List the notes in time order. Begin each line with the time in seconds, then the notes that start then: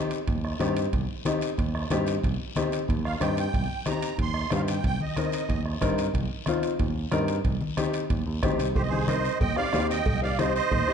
Already playing: C4 D#4 G4
0.11 high timbale, short guiro
0.28 D#2, bombo low, high timbale, long guiro
0.45 bombo rim
0.60 G2 C4 D#4 G4, bombo rim, high conga, high timbale, low timbale, short guiro
0.77 high timbale, short guiro
0.93 C2, bombo low, high timbale, long guiro
1.25 C4 D#4 G4, bombo rim, high conga, high timbale, short guiro
1.41 high timbale, short guiro
1.57 D#2, bombo low, high timbale, long guiro
1.75 bombo rim
1.90 G2 C4 D#4 G4, bombo rim, high conga, high timbale, low timbale, short guiro
2.07 high timbale, short guiro
2.23 C2, bombo low, high timbale, long guiro
2.56 C4 D#4 G4, bombo rim, high conga, high timbale, short guiro
2.72 high timbale, short guiro
2.88 D#2, bombo low, high timbale, long guiro
3.05 F5, bombo rim
3.20 G2 C4 D#4 G4 G5, bombo rim, high conga, high timbale, short guiro
3.37 G5, high timbale, short guiro
3.53 C2, bombo low, high timbale, long guiro
3.86 C4 D#4 G4 A#5, bombo rim, high conga, high timbale, short guiro
4.02 high timbale, short guiro
4.18 D#2 C6, bombo low, high timbale, long guiro
4.34 bombo rim
4.50 G2 C4 D#4 G4, bombo rim, high conga, high timbale, low timbale, short guiro
4.55 F5
4.68 G5, high timbale, short guiro
4.84 C2 G5, bombo low, high timbale, long guiro
5.00 D#5, high conga
5.16 C4 D#4 A#4, bombo rim, high conga, high timbale, short guiro
5.32 high timbale, short guiro
5.49 D#2, bombo low, high timbale, long guiro
5.66 bombo rim
5.81 G2 C4 D#4 A#4, bombo low, bombo rim, high conga, high timbale, short guiro
5.98 high timbale, short guiro
6.14 C2, bombo low, high timbale, long guiro
6.46 C4 D#4 F4, bombo rim, high conga, high timbale, short guiro
6.63 high timbale, short guiro
6.79 D#2, bombo low, high timbale, long guiro
7.11 G2 C4 D#4 A#4, bombo rim, high conga, high timbale, low timbale, short guiro
7.28 high timbale, short guiro
7.44 C2, bombo low, high timbale, long guiro
7.61 high conga
7.77 C4 D#4 G4, bombo rim, high conga, high timbale, short guiro
7.94 high timbale, short guiro
8.10 D#2, bombo low, high timbale, long guiro
8.27 D#2
8.43 D2 C4 D#4 G4, bombo low, bombo rim, high conga, high timbale, low timbale, short guiro
8.59 C2, high timbale, short guiro
8.75 C2 G4 C5, bombo low, cowbell, high conga, long guiro
8.82 D#5
8.88 C4 D#4 G#4 C5, high conga
8.93 G4
9.07 C4 D#4 A#4 C5 D#5, bombo rim, cowbell, high conga, short guiro
9.25 short guiro
9.40 D#2 D#5 G5, bombo low, cowbell, high conga, low conga, long guiro
9.56 C4 D#4 G4 D5 F5, bombo rim
9.73 D#2 C4 D#4 G4, bombo rim, cowbell, high conga, low timbale, short guiro
9.90 D#5 G5, short guiro
10.06 C2, bombo low, cowbell, high conga, low conga, long guiro
10.22 C4 D#4 G4 D5 F5
10.38 C4 D#4 G4 C5 D#5, bombo rim, cowbell, high conga, short guiro
10.55 C5 D#5, short guiro
10.71 D#2, bombo low, cowbell, high conga, low conga, long guiro
10.87 C4 D#4 G4, bombo rim